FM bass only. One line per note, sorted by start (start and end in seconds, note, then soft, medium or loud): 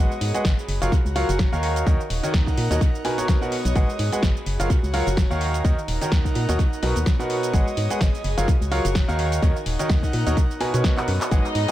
0.21 0.32 G#2 medium
0.45 0.56 G#1 medium
0.68 0.80 F#1 medium
0.82 0.90 F#1 medium
1.05 1.25 C#2 medium
1.29 1.48 F#1 medium
1.53 1.84 D#2 medium
1.87 1.98 D#2 loud
2.10 2.21 D#1 medium
2.34 2.45 D#2 loud
2.57 2.69 A#2 medium
2.71 2.79 D#2 medium
3.65 3.74 B1 loud
3.76 3.87 G#1 loud
3.99 4.10 G#2 medium
4.23 4.34 G#1 medium
4.46 4.58 F#1 medium
4.60 4.68 F#1 medium
4.83 5.03 C#2 medium
5.07 5.26 F#1 loud
5.31 5.62 D#2 medium
5.65 5.76 D#2 medium
5.88 5.99 D#1 medium
6.12 6.23 D#2 medium
6.36 6.47 A#2 medium
6.49 6.57 D#2 medium
6.83 6.94 B1 loud
6.96 7.05 D#2 medium
7.53 7.65 G#1 loud
7.77 7.88 G#2 medium
8.01 8.12 G#1 medium
8.24 8.36 F#1 medium
8.38 8.46 F#1 medium
8.61 8.81 C#2 medium
8.85 9.04 F#1 loud
9.09 9.40 D#2 medium
9.42 9.54 D#2 loud
9.66 9.77 D#1 medium
9.90 10.01 D#2 medium
10.13 10.24 A#2 medium
10.27 10.35 D#2 medium
10.74 10.83 B2 loud
11.08 11.19 F#2 medium
11.31 11.43 G#1 loud
11.55 11.66 G#2 medium